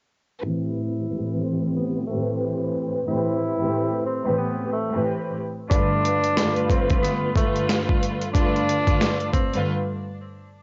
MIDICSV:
0, 0, Header, 1, 4, 480
1, 0, Start_track
1, 0, Key_signature, 0, "minor"
1, 0, Tempo, 659341
1, 318, Time_signature, 4, 2, 24, 8
1, 7736, End_track
2, 0, Start_track
2, 0, Title_t, "String section"
2, 0, Program_c, 0, 48
2, 303, Note_on_c, 0, 45, 84
2, 308, Note_on_c, 0, 52, 83
2, 311, Note_on_c, 0, 60, 86
2, 316, Note_on_c, 0, 67, 81
2, 320, Note_on_c, 0, 71, 99
2, 758, Note_off_c, 0, 45, 0
2, 761, Note_off_c, 0, 52, 0
2, 763, Note_off_c, 0, 60, 0
2, 765, Note_off_c, 0, 67, 0
2, 767, Note_off_c, 0, 71, 0
2, 796, Note_on_c, 0, 45, 100
2, 799, Note_on_c, 0, 52, 93
2, 803, Note_on_c, 0, 60, 90
2, 808, Note_on_c, 0, 67, 88
2, 812, Note_on_c, 0, 71, 100
2, 1469, Note_off_c, 0, 45, 0
2, 1471, Note_off_c, 0, 52, 0
2, 1473, Note_off_c, 0, 60, 0
2, 1475, Note_off_c, 0, 67, 0
2, 1477, Note_off_c, 0, 71, 0
2, 1515, Note_on_c, 0, 45, 102
2, 1519, Note_on_c, 0, 52, 86
2, 1524, Note_on_c, 0, 60, 81
2, 1528, Note_on_c, 0, 67, 84
2, 1532, Note_on_c, 0, 71, 99
2, 2188, Note_off_c, 0, 45, 0
2, 2191, Note_off_c, 0, 52, 0
2, 2193, Note_off_c, 0, 60, 0
2, 2195, Note_off_c, 0, 67, 0
2, 2197, Note_off_c, 0, 71, 0
2, 2224, Note_on_c, 0, 45, 92
2, 2227, Note_on_c, 0, 52, 83
2, 2232, Note_on_c, 0, 60, 84
2, 2236, Note_on_c, 0, 67, 90
2, 2241, Note_on_c, 0, 71, 108
2, 2577, Note_off_c, 0, 45, 0
2, 2579, Note_off_c, 0, 52, 0
2, 2581, Note_off_c, 0, 60, 0
2, 2583, Note_off_c, 0, 67, 0
2, 2585, Note_off_c, 0, 71, 0
2, 2612, Note_on_c, 0, 45, 93
2, 2616, Note_on_c, 0, 52, 80
2, 2620, Note_on_c, 0, 60, 84
2, 2625, Note_on_c, 0, 67, 90
2, 2629, Note_on_c, 0, 71, 97
2, 2931, Note_off_c, 0, 45, 0
2, 2933, Note_off_c, 0, 52, 0
2, 2935, Note_off_c, 0, 60, 0
2, 2938, Note_off_c, 0, 67, 0
2, 2940, Note_off_c, 0, 71, 0
2, 3082, Note_on_c, 0, 45, 97
2, 3087, Note_on_c, 0, 52, 82
2, 3091, Note_on_c, 0, 60, 81
2, 3095, Note_on_c, 0, 67, 85
2, 3099, Note_on_c, 0, 71, 101
2, 3406, Note_off_c, 0, 45, 0
2, 3409, Note_off_c, 0, 52, 0
2, 3411, Note_off_c, 0, 60, 0
2, 3413, Note_off_c, 0, 67, 0
2, 3415, Note_off_c, 0, 71, 0
2, 3566, Note_on_c, 0, 45, 86
2, 3570, Note_on_c, 0, 52, 83
2, 3575, Note_on_c, 0, 60, 71
2, 3580, Note_on_c, 0, 67, 77
2, 3584, Note_on_c, 0, 71, 101
2, 3888, Note_off_c, 0, 45, 0
2, 3891, Note_off_c, 0, 52, 0
2, 3893, Note_off_c, 0, 60, 0
2, 3895, Note_off_c, 0, 67, 0
2, 3897, Note_off_c, 0, 71, 0
2, 4144, Note_on_c, 0, 43, 92
2, 4149, Note_on_c, 0, 50, 83
2, 4153, Note_on_c, 0, 57, 88
2, 4157, Note_on_c, 0, 65, 77
2, 4161, Note_on_c, 0, 71, 102
2, 4599, Note_off_c, 0, 43, 0
2, 4602, Note_off_c, 0, 50, 0
2, 4604, Note_off_c, 0, 57, 0
2, 4605, Note_off_c, 0, 65, 0
2, 4608, Note_off_c, 0, 71, 0
2, 4634, Note_on_c, 0, 43, 95
2, 4638, Note_on_c, 0, 50, 88
2, 4643, Note_on_c, 0, 57, 89
2, 4646, Note_on_c, 0, 65, 86
2, 4651, Note_on_c, 0, 71, 108
2, 5308, Note_off_c, 0, 43, 0
2, 5310, Note_off_c, 0, 50, 0
2, 5312, Note_off_c, 0, 57, 0
2, 5314, Note_off_c, 0, 65, 0
2, 5316, Note_off_c, 0, 71, 0
2, 5357, Note_on_c, 0, 43, 96
2, 5361, Note_on_c, 0, 50, 80
2, 5366, Note_on_c, 0, 57, 86
2, 5370, Note_on_c, 0, 65, 93
2, 5374, Note_on_c, 0, 71, 102
2, 6030, Note_off_c, 0, 43, 0
2, 6031, Note_off_c, 0, 50, 0
2, 6034, Note_off_c, 0, 57, 0
2, 6036, Note_off_c, 0, 65, 0
2, 6038, Note_off_c, 0, 71, 0
2, 6063, Note_on_c, 0, 43, 94
2, 6067, Note_on_c, 0, 50, 83
2, 6072, Note_on_c, 0, 57, 82
2, 6076, Note_on_c, 0, 65, 89
2, 6079, Note_on_c, 0, 71, 98
2, 6417, Note_off_c, 0, 43, 0
2, 6419, Note_off_c, 0, 50, 0
2, 6421, Note_off_c, 0, 57, 0
2, 6423, Note_off_c, 0, 65, 0
2, 6425, Note_off_c, 0, 71, 0
2, 6448, Note_on_c, 0, 43, 87
2, 6452, Note_on_c, 0, 50, 77
2, 6457, Note_on_c, 0, 57, 81
2, 6461, Note_on_c, 0, 65, 84
2, 6465, Note_on_c, 0, 71, 96
2, 6769, Note_off_c, 0, 43, 0
2, 6771, Note_off_c, 0, 50, 0
2, 6774, Note_off_c, 0, 57, 0
2, 6776, Note_off_c, 0, 65, 0
2, 6778, Note_off_c, 0, 71, 0
2, 6940, Note_on_c, 0, 43, 91
2, 6944, Note_on_c, 0, 50, 82
2, 6949, Note_on_c, 0, 57, 82
2, 6952, Note_on_c, 0, 65, 81
2, 6956, Note_on_c, 0, 71, 99
2, 7039, Note_off_c, 0, 43, 0
2, 7042, Note_off_c, 0, 50, 0
2, 7044, Note_off_c, 0, 57, 0
2, 7046, Note_off_c, 0, 65, 0
2, 7048, Note_off_c, 0, 71, 0
2, 7736, End_track
3, 0, Start_track
3, 0, Title_t, "Tenor saxophone"
3, 0, Program_c, 1, 66
3, 321, Note_on_c, 1, 64, 103
3, 1011, Note_off_c, 1, 64, 0
3, 1045, Note_on_c, 1, 60, 75
3, 1258, Note_off_c, 1, 60, 0
3, 1284, Note_on_c, 1, 59, 79
3, 1497, Note_off_c, 1, 59, 0
3, 1507, Note_on_c, 1, 57, 81
3, 1728, Note_off_c, 1, 57, 0
3, 2245, Note_on_c, 1, 64, 104
3, 2932, Note_off_c, 1, 64, 0
3, 2958, Note_on_c, 1, 60, 76
3, 3174, Note_off_c, 1, 60, 0
3, 3189, Note_on_c, 1, 59, 72
3, 3409, Note_off_c, 1, 59, 0
3, 3441, Note_on_c, 1, 57, 80
3, 3656, Note_off_c, 1, 57, 0
3, 4149, Note_on_c, 1, 62, 121
3, 4845, Note_off_c, 1, 62, 0
3, 4880, Note_on_c, 1, 60, 79
3, 5095, Note_off_c, 1, 60, 0
3, 5116, Note_on_c, 1, 59, 80
3, 5333, Note_off_c, 1, 59, 0
3, 5360, Note_on_c, 1, 57, 82
3, 5575, Note_off_c, 1, 57, 0
3, 6069, Note_on_c, 1, 62, 115
3, 6764, Note_off_c, 1, 62, 0
3, 6792, Note_on_c, 1, 60, 76
3, 7011, Note_off_c, 1, 60, 0
3, 7736, End_track
4, 0, Start_track
4, 0, Title_t, "Drums"
4, 4157, Note_on_c, 9, 36, 109
4, 4162, Note_on_c, 9, 42, 99
4, 4230, Note_off_c, 9, 36, 0
4, 4235, Note_off_c, 9, 42, 0
4, 4405, Note_on_c, 9, 42, 73
4, 4478, Note_off_c, 9, 42, 0
4, 4541, Note_on_c, 9, 42, 51
4, 4614, Note_off_c, 9, 42, 0
4, 4639, Note_on_c, 9, 38, 107
4, 4645, Note_on_c, 9, 42, 99
4, 4712, Note_off_c, 9, 38, 0
4, 4718, Note_off_c, 9, 42, 0
4, 4779, Note_on_c, 9, 42, 36
4, 4852, Note_off_c, 9, 42, 0
4, 4876, Note_on_c, 9, 36, 85
4, 4881, Note_on_c, 9, 42, 66
4, 4948, Note_off_c, 9, 36, 0
4, 4954, Note_off_c, 9, 42, 0
4, 5021, Note_on_c, 9, 42, 44
4, 5027, Note_on_c, 9, 36, 83
4, 5094, Note_off_c, 9, 42, 0
4, 5100, Note_off_c, 9, 36, 0
4, 5119, Note_on_c, 9, 38, 37
4, 5129, Note_on_c, 9, 42, 79
4, 5192, Note_off_c, 9, 38, 0
4, 5202, Note_off_c, 9, 42, 0
4, 5356, Note_on_c, 9, 36, 86
4, 5369, Note_on_c, 9, 42, 78
4, 5428, Note_off_c, 9, 36, 0
4, 5442, Note_off_c, 9, 42, 0
4, 5502, Note_on_c, 9, 42, 45
4, 5575, Note_off_c, 9, 42, 0
4, 5601, Note_on_c, 9, 38, 104
4, 5605, Note_on_c, 9, 42, 93
4, 5673, Note_off_c, 9, 38, 0
4, 5678, Note_off_c, 9, 42, 0
4, 5746, Note_on_c, 9, 36, 90
4, 5818, Note_off_c, 9, 36, 0
4, 5845, Note_on_c, 9, 42, 76
4, 5918, Note_off_c, 9, 42, 0
4, 5981, Note_on_c, 9, 42, 49
4, 6054, Note_off_c, 9, 42, 0
4, 6077, Note_on_c, 9, 36, 117
4, 6082, Note_on_c, 9, 42, 100
4, 6150, Note_off_c, 9, 36, 0
4, 6155, Note_off_c, 9, 42, 0
4, 6232, Note_on_c, 9, 42, 35
4, 6304, Note_off_c, 9, 42, 0
4, 6327, Note_on_c, 9, 42, 72
4, 6400, Note_off_c, 9, 42, 0
4, 6459, Note_on_c, 9, 36, 86
4, 6462, Note_on_c, 9, 42, 52
4, 6531, Note_off_c, 9, 36, 0
4, 6535, Note_off_c, 9, 42, 0
4, 6560, Note_on_c, 9, 38, 111
4, 6566, Note_on_c, 9, 42, 95
4, 6632, Note_off_c, 9, 38, 0
4, 6639, Note_off_c, 9, 42, 0
4, 6699, Note_on_c, 9, 42, 36
4, 6772, Note_off_c, 9, 42, 0
4, 6796, Note_on_c, 9, 36, 84
4, 6801, Note_on_c, 9, 42, 65
4, 6869, Note_off_c, 9, 36, 0
4, 6874, Note_off_c, 9, 42, 0
4, 6941, Note_on_c, 9, 42, 43
4, 7014, Note_off_c, 9, 42, 0
4, 7736, End_track
0, 0, End_of_file